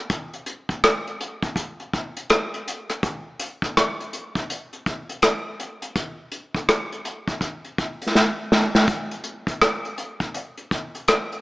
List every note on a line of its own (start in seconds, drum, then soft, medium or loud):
0.10 kick loud
0.10 closed hi-hat medium
0.34 closed hi-hat soft
0.46 closed hi-hat medium
0.69 kick medium
0.69 closed hi-hat soft
0.84 cross-stick loud
0.84 closed hi-hat medium
1.07 closed hi-hat soft
1.21 closed hi-hat medium
1.43 kick medium
1.43 closed hi-hat soft
1.56 kick medium
1.56 closed hi-hat medium
1.80 closed hi-hat soft
1.93 kick medium
1.93 closed hi-hat soft
2.17 closed hi-hat soft
2.30 cross-stick loud
2.30 closed hi-hat medium
2.54 closed hi-hat soft
2.68 closed hi-hat medium
2.90 cross-stick soft
2.90 closed hi-hat soft
3.03 kick loud
3.03 closed hi-hat medium
3.40 closed hi-hat medium
3.62 kick medium
3.62 cross-stick soft
3.62 closed hi-hat soft
3.77 cross-stick loud
3.77 closed hi-hat medium
4.00 closed hi-hat soft
4.13 closed hi-hat medium
4.35 kick medium
4.35 closed hi-hat soft
4.50 closed hi-hat medium
4.73 closed hi-hat soft
4.86 kick medium
4.86 closed hi-hat medium
5.09 closed hi-hat soft
5.22 cross-stick medium
5.22 closed hi-hat medium
5.60 closed hi-hat medium
5.82 closed hi-hat soft
5.96 kick loud
5.96 closed hi-hat medium
6.32 closed hi-hat medium
6.55 kick medium
6.55 cross-stick soft
6.55 closed hi-hat soft
6.69 cross-stick loud
6.69 closed hi-hat medium
6.92 closed hi-hat soft
7.05 closed hi-hat medium
7.28 kick medium
7.28 closed hi-hat soft
7.41 kick medium
7.41 closed hi-hat medium
7.65 closed hi-hat soft
7.78 kick medium
7.78 closed hi-hat medium
8.02 closed hi-hat soft
8.15 snare medium
8.52 snare medium
8.75 snare medium
8.88 kick loud
8.88 closed hi-hat medium
9.11 closed hi-hat soft
9.24 closed hi-hat medium
9.47 kick medium
9.47 closed hi-hat soft
9.62 cross-stick loud
9.62 closed hi-hat medium
9.85 closed hi-hat soft
9.98 closed hi-hat medium
10.20 kick medium
10.20 closed hi-hat soft
10.34 closed hi-hat medium
10.57 closed hi-hat soft
10.71 kick medium
10.71 closed hi-hat medium
10.95 closed hi-hat soft
11.08 cross-stick medium
11.08 closed hi-hat medium
11.32 closed hi-hat soft